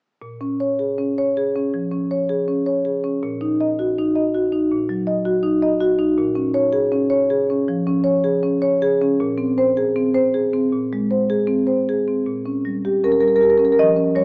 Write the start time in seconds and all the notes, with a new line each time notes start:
0.22 A#2
0.41 C#4
0.60 C#5
0.79 G#4
0.98 C#4
1.18 C#5
1.37 G#4
1.56 C#4
1.74 F3
1.92 C#4
2.11 C#5
2.29 G#4
2.48 C#4
2.66 C#5
2.85 G#4
3.04 C#4
3.23 A#2
3.41 D#4
3.61 D#5
3.79 F#4
3.98 D#4
4.15 D#5
4.35 F#4
4.52 D#4
4.71 A#2
4.89 F#3
5.07 D#5
5.25 F#4
5.43 D#4
5.62 D#5
5.81 F#4
5.99 D#4
6.18 A#2
6.35 C#4
6.54 C#5
6.73 G#4
6.92 C#4
7.10 C#5
7.30 G#4
7.50 C#4
7.68 F3
7.87 C#4
8.04 C#5
8.24 G#4
8.43 C#4
8.62 C#5
8.82 G#4
9.01 C#4
9.20 A#2
9.38 C4
9.58 C5
9.77 G#4
9.96 C4
10.14 C5
10.34 G#4
10.53 C4
10.73 A#2
10.93 G#3
11.11 C5
11.30 G#4
11.47 C4
11.67 C5
11.89 G#4
12.08 C4
12.26 A#2
12.46 C#4
12.65 G3
12.85 G4
13.04 C#4 A#4
13.12 A#4
13.21 G3 A#4
13.28 A#4
13.36 A#4
13.41 G4 A#4
13.50 A#4
13.58 C#4 A#4
13.65 A#4
13.72 A#4
13.79 F3 D#5
13.96 C#4
14.16 G3 C#5